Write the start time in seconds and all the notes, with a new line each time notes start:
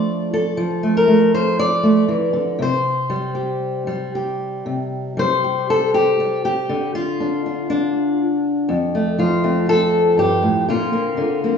Already playing: F3 A3 D4 F4 D5
0.34 A4
0.57 F3
0.83 A3
0.97 A#4
1.08 A3
1.34 C5
1.59 D5
1.83 A3
2.08 E3
2.33 D3
2.59 C3 C5
3.10 G3
3.35 G4
3.87 G3
4.15 G4
4.66 C3
5.17 G3 C5
5.44 G4
5.70 A4
5.94 G4
6.20 G3
6.45 G4
6.69 D3
6.95 F4
7.20 D4
7.46 D4
7.70 D4
8.69 F2
8.95 A3
9.18 F3 F4
9.44 A3 C4
9.69 A4
10.17 G2 G4
10.43 A2
10.68 A#2 D3 A#3 C4 F4
10.93 A#3
11.17 D3
11.44 A#3 C4